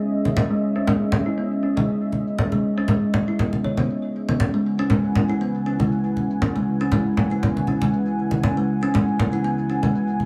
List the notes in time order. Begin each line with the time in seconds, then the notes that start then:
Already playing: C#4 G#4 D#5 E5
0.01 cabasa
0.25 high conga, cabasa
0.37 C#4, low conga
0.51 G#3
0.76 C#4, cabasa
0.87 G#3, low conga
1.01 cabasa
1.12 low conga
1.26 E4, cabasa
1.38 B3, cabasa
1.52 cabasa
1.63 C#4
1.77 G#3, high conga
1.88 cabasa
2.02 cabasa
2.12 high conga
2.27 cabasa
2.39 C#4, low conga, cabasa
2.52 G#3, high conga
2.78 C#4, cabasa
2.88 G#3, high conga, low conga
3.03 cabasa
3.14 low conga
3.28 E4, cabasa
3.39 B3, low conga
3.53 high conga
3.64 C#5, high conga
3.77 B3, high conga, cabasa
3.90 cabasa
4.04 cabasa
4.29 B3, high conga, cabasa
4.40 C#3 C#4 E4 B4 F#5 G#5, low conga
4.54 G#3, cabasa
4.79 C#4, cabasa
4.90 G#3, low conga, cabasa
5.05 cabasa
5.15 low conga
5.30 E4, cabasa
5.41 B3, cabasa
5.55 cabasa
5.66 C#4
5.80 G#3, high conga, cabasa
5.92 cabasa
6.05 cabasa
6.17 high conga
6.30 cabasa
6.42 C#4, low conga
6.56 G#3, high conga, cabasa
6.81 C#4, cabasa
6.92 G#3, high conga, low conga, cabasa
7.06 cabasa
7.17 low conga
7.31 E4, cabasa
7.43 B3, low conga, cabasa
7.56 high conga, cabasa
7.67 C#4, high conga
7.82 G#3, high conga, cabasa
7.93 cabasa
8.07 cabasa
8.31 high conga, cabasa
8.43 C#4, low conga, cabasa
8.57 G#3, cabasa
8.83 C#4, cabasa
8.94 G#3, low conga, cabasa
9.08 cabasa
9.19 low conga
9.33 E4, cabasa
9.44 B3, cabasa
9.58 cabasa
9.70 C#4
9.83 G#3, high conga, cabasa
9.95 cabasa
10.09 cabasa
10.20 high conga